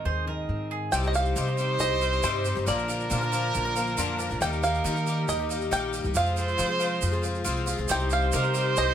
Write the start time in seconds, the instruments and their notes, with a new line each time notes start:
Already playing: steel-string acoustic guitar G#2 D#3 C4 D#4, five-string banjo C5
0.05 upright bass D#2, steel-string acoustic guitar G#4, mandolin C5
0.27 steel-string acoustic guitar D#3 D#4, mandolin A#4
0.49 upright bass G#2, steel-string acoustic guitar C4
0.71 mandolin G#4
0.92 upright bass C2, twelve-string acoustic guitar C3 G3 C4 D#4 G4, tonewheel organ C3 G3 D#4, trumpet C5, five-string banjo G5, shaker
1.03 shaker
1.07 five-string banjo D#5
1.14 twelve-string acoustic guitar G3 C4 D#4 G4, five-string banjo F5, shaker
1.25 shaker
1.36 twelve-string acoustic guitar C3 G3 C4 D#4 G4, upright bass C3, shaker
1.47 twelve-string acoustic guitar C4 D#4 G4
1.57 twelve-string acoustic guitar G3 C4 D#4 G4, shaker
1.79 upright bass C2, five-string banjo D#5, shaker
1.90 twelve-string acoustic guitar C4 D#4 G4
2.01 twelve-string acoustic guitar G3 C4 D#4 G4, shaker
2.12 shaker
2.23 upright bass G2, twelve-string acoustic guitar C3 G3 C4 D#4 G4, five-string banjo C5, shaker
2.44 twelve-string acoustic guitar G3 C4 D#4 G4, shaker
2.55 upright bass G2, twelve-string acoustic guitar C4 D#4 G4, shaker
2.61 trumpet C5
2.66 upright bass A#1, twelve-string acoustic guitar A#2 D3 F3 A#3 D4 A#4, tonewheel organ D3 A#3 F4, trumpet A#4, five-string banjo D5, shaker
2.78 shaker
2.88 twelve-string acoustic guitar F3 A#3 D4 A#4, shaker
3.00 shaker
3.10 twelve-string acoustic guitar A#2 D3 F3 A#3 D4 A#4, upright bass A#2, shaker
3.21 twelve-string acoustic guitar F3 A#3 D4 A#4, shaker
3.32 twelve-string acoustic guitar F3 A#3 D4 A#4, shaker
3.54 upright bass A#1, shaker
3.65 twelve-string acoustic guitar F3 A#3 D4 A#4
3.75 twelve-string acoustic guitar F3 A#3 D4 A#4, shaker
3.87 shaker
3.97 upright bass F2, twelve-string acoustic guitar A#2 D3 F3 A#3 D4 A#4, shaker
4.18 twelve-string acoustic guitar F3 A#3 D4 A#4, shaker
4.30 upright bass A#1, twelve-string acoustic guitar F3 A#3 D4 A#4, shaker
4.40 upright bass D#2, twelve-string acoustic guitar D#3 G3 A#3 D#4 G4, tonewheel organ D#3 G4, trumpet A#4, five-string banjo G5, shaker
4.52 shaker
4.62 twelve-string acoustic guitar G3 A#3 D#4 G4, five-string banjo F5, shaker
4.74 shaker
4.84 twelve-string acoustic guitar D#3 G3 A#3 D#4 G4, upright bass D#3, shaker
4.94 twelve-string acoustic guitar D#4 G4, shaker
5.06 twelve-string acoustic guitar G3 A#3 D#4 G4, shaker
5.28 upright bass D#2, five-string banjo D#5, shaker
5.39 twelve-string acoustic guitar A#3 D#4 G4
5.49 twelve-string acoustic guitar G3 A#3 D#4 G4, shaker
5.61 shaker
5.71 upright bass A#1, twelve-string acoustic guitar D#3 G3 A#3 D#4 G4, five-string banjo G5, shaker
5.92 twelve-string acoustic guitar G3 A#3 D#4 G4, shaker
6.03 upright bass C2, twelve-string acoustic guitar A#3 D#4 G4, shaker
6.15 upright bass F2, tonewheel organ C3 G#3 F4, twelve-string acoustic guitar F3 C4 F4 G#4, trumpet C5, five-string banjo F5, shaker
6.26 shaker
6.36 twelve-string acoustic guitar F3 C4 F4 G#4, shaker
6.48 shaker
6.58 twelve-string acoustic guitar F3 C4 F4 G#4, upright bass F3, shaker
6.68 twelve-string acoustic guitar C4 F4 G#4
6.79 twelve-string acoustic guitar F3 C4 F4 G#4, shaker
7.02 upright bass F2, shaker
7.12 twelve-string acoustic guitar C4 F4 G#4
7.22 twelve-string acoustic guitar F3 C4 F4 G#4, shaker
7.35 shaker
7.44 upright bass C2, twelve-string acoustic guitar F3 C4 F4 G#4, shaker
7.66 twelve-string acoustic guitar F3 C4 F4 G#4, shaker
7.77 upright bass C2, twelve-string acoustic guitar C4 F4 G#4
7.88 upright bass C2, twelve-string acoustic guitar C3 G3 C4 D#4 G4, tonewheel organ G3 D#4, mandolin C5, trumpet C5, five-string banjo G5, shaker
8.10 twelve-string acoustic guitar G3 C4 D#4 G4, five-string banjo F5, shaker
8.32 twelve-string acoustic guitar C3 G3 C4 D#4 G4, upright bass C3, mandolin A#4, shaker
8.43 twelve-string acoustic guitar C4 D#4 G4, shaker
8.54 twelve-string acoustic guitar G3 C4 D#4 G4, shaker
8.76 upright bass C2, mandolin C5, five-string banjo D#5, shaker
8.87 twelve-string acoustic guitar C4 D#4 G4